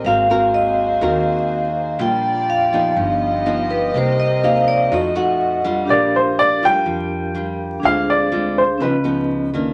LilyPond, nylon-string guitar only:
\new Staff \with { instrumentName = "Nylon-string guitar" } { \time 4/4 \key bes \major \tempo 4 = 123 << { <c' ges' bes'>8 <c' ges' bes'>4. <c' ges' bes'>4. r8 | <g d' f'>4. <f ces' ees'>4. <f b dis'>4 | <bes ees' g'>8 r8 <bes ees' g'>4 <a ees' ges'>8 <a ees' ges'>4 <g d' f'>8~ | <g d' f'>4 r8 <g d' f'>4. <g d' f'>4 |
<aes c' f'>4 <aes c' f'>8 r8 <f ces' ees'>8 <f ces' ees'>4 <ees bes d'>8 | } \\ { aes2 ees2 | bes,2 g,2 | c2 f2 | bes,2 f2 |
d2 des2 | } >> }